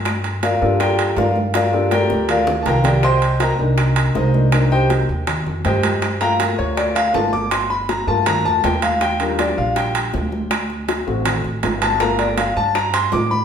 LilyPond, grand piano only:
\new Staff \with { instrumentName = "Grand piano" } { \time 4/4 \key g \minor \tempo 4 = 161 << { r4 <f' bes' d'' f''>8 <d' g' bes' d''>8 <g' bes' d'' g''>4 <f' bes' d'' f''>8 r8 | <f' bes' d'' f''>8 <d' g' bes' d''>8 <g' bes' d'' g''>4 <f' bes' d'' f''>8 r8 <bes' f'' g'' a'' bes''>8 <g' bes' d'' g''>8 | <c'' ees'' g'' c'''>4 <bes' ees'' g'' bes''>8 r4. <ees' bes' c'' ees''>4~ | <ees' bes' c'' ees''>8 <g' c'' ees'' g''>8 r2 <g' c'' ees'' g''>4~ |
<g' c'' ees'' g''>8 <bes' f'' g'' bes''>8 r8 cis''8 d''8 f''8 a''8 d'''8 | c'''8 b''8 bes''8 a''8 bes''8 a''8 g''8 f''8 | g''8 bes'8 d''8 f''8 g''2 | r2. r8 a''8 |
bes''8 d''8 f''8 a''8 bes''8 c'''8 d'''8 b''8 | } \\ { <a bes f'>8 r4 <bes f' a'>4. r4 | r8 <bes f' a'>4. r2 | r4. <bes d' ees'>4. r8 <bes d' ees'>8 | <bes d' ees'>4. r2 r8 |
r8 <a bes f'>2~ <a bes f'>8 <a bes f'>8 r8 | r4. <a bes f'>4. r4 | r8 <g d' f'>2.~ <g d' f'>8 | r4. <a c' fis'>8 r2 |
<a bes f'>8 r2. r8 | } >> }